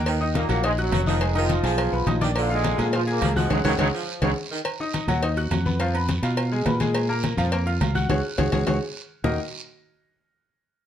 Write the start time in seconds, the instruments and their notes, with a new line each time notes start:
Already playing: fingered electric bass D#2, grand piano A#3 A#4 A#5
0.06 saxophone section D#3, cowbell, high conga, low agogo, long guiro
0.21 grand piano D#4 D#5 D#6, high conga
0.34 trombone section A#2 A#3, cowbell, high conga, low timbale, low agogo, short guiro
0.49 fingered electric bass A#1, trombone section A#2 A#3, grand piano F#3 F#4 F#5, low conga, low agogo, short guiro
0.63 trombone section G#2 G#3, grand piano D#4 D#5 D#6, cowbell, high conga, long guiro
0.78 trombone section F#2 F#3, grand piano F#4 F#5 F#6, high conga, low agogo
0.92 fingered electric bass F1, saxophone section F#3, cowbell, high conga, low timbale, low agogo, short guiro
1.06 trombone section D#3 D#4, saxophone section F3, grand piano D#4 D#5 D#6, high conga, short guiro
1.21 grand piano G#3 G#4 G#5, cowbell, low agogo, long guiro
1.35 saxophone section D#3, trombone section F3 F4, grand piano D#4 D#5 D#6, high conga, low agogo
1.49 cowbell, high conga, low timbale, short guiro
1.63 fingered electric bass B1, saxophone section F3, grand piano G#4 G#5 G#6, cowbell, low agogo, short guiro
1.78 cowbell, high conga, low agogo, long guiro
1.92 fingered electric bass B1, grand piano B3 B4 B5, high conga
2.06 fingered electric bass A#1, grand piano D#4 D#5 D#6, cowbell, high conga, low timbale, low agogo, short guiro
2.21 saxophone section D#3, grand piano D4 D5 D6, cowbell, high conga, short guiro
2.35 saxophone section D3, trombone section F3 F4, cowbell, low agogo, long guiro
2.50 trombone section G#2 G#3, grand piano F4 F5 F6, high conga
2.64 cowbell, high conga, low timbale, low agogo, short guiro
2.78 fingered electric bass A#2, trombone section F3 F4, grand piano G#3 G#4 G#5, low conga, low agogo, short guiro
2.93 trombone section F3 F4, grand piano F4 F5 F6, cowbell, high conga, long guiro
3.07 trombone section A#2 A#3, grand piano G#4 G#5 G#6, high conga, low agogo
3.21 fingered electric bass C#2, saxophone section F3, cowbell, high conga, low timbale, low agogo, short guiro
3.36 trombone section G#2 G#3, saxophone section F3, grand piano F#4 F#5 F#6, high conga, short guiro
3.50 fingered electric bass C#2, trombone section C#3 F#3 G#3, grand piano G#4 C#5 F#5, cowbell, high conga, high timbale, long guiro
3.64 fingered electric bass C#2, trombone section C#3 F#3 G#3, saxophone section D#3, grand piano G#4 C#5 F#5, cowbell, high conga, high timbale, long guiro
3.78 fingered electric bass C#2, trombone section C#3 F#3 G#3, grand piano G#4 C#5 F#5, cowbell, high conga, high timbale, long guiro
3.93 saxophone section F3
4.22 fingered electric bass C#2, trombone section C#3 F#3 G#3, grand piano G#4 C#5 F#5, cowbell, high conga, high timbale, long guiro
4.51 saxophone section D#3
4.65 cowbell, high conga, low agogo, long guiro
4.80 grand piano D#4 D#5 D#6, high conga
4.94 cowbell, high conga, low timbale, low agogo, short guiro
5.08 fingered electric bass D#2, grand piano F#3 F#4 F#5, low conga, low agogo, short guiro
5.22 grand piano D#4 D#5 D#6, cowbell, high conga, long guiro
5.37 grand piano F#4 F#5 F#6, high conga, low agogo
5.51 fingered electric bass F2, cowbell, high conga, low timbale, low agogo, short guiro
5.66 grand piano B3 B4 B5, high conga, short guiro
5.80 grand piano F3 F4 F5, cowbell, low agogo, long guiro
5.94 grand piano B3 B4 B5, high conga, low agogo
6.09 cowbell, high conga, low timbale, short guiro
6.23 fingered electric bass B2, grand piano F4 F5 F6, cowbell, high conga, low agogo, short guiro
6.37 cowbell, high conga, low agogo, long guiro
6.52 grand piano G#3 G#4 G#5, high conga
6.66 fingered electric bass A#2, grand piano B3 B4 B5, cowbell, high conga, low timbale, low agogo, short guiro
6.80 grand piano G#3 G#4 G#5, cowbell, high conga, short guiro
6.95 cowbell, high conga, low agogo, long guiro
7.09 grand piano A#3 A#4 A#5, high conga
7.23 cowbell, high conga, low timbale, low agogo, short guiro
7.37 fingered electric bass F2, grand piano F3 F4 F5, low conga, low agogo, short guiro
7.52 grand piano A#3 A#4 A#5, cowbell, high conga, long guiro
7.66 grand piano F4 F5 F6, high conga, low agogo
7.81 fingered electric bass C#2, cowbell, high conga, low timbale, low agogo, short guiro
7.95 grand piano F#4 F#5 F#6, high conga, short guiro
8.09 fingered electric bass C#2, grand piano F#4 G#4 C#5, cowbell, high conga, high timbale, long guiro
8.38 fingered electric bass C#2, grand piano F#4 G#4 C#5, cowbell, high conga, high timbale, long guiro
8.52 fingered electric bass C#2, grand piano F#4 G#4 C#5, cowbell, high conga, high timbale, long guiro
8.67 fingered electric bass C#2, grand piano F#4 G#4 C#5, cowbell, high conga, high timbale, long guiro
9.24 fingered electric bass D#2, grand piano D#3 A#3 D#4 F#4 A#4 D#5, low bongo, low conga, low timbale, long guiro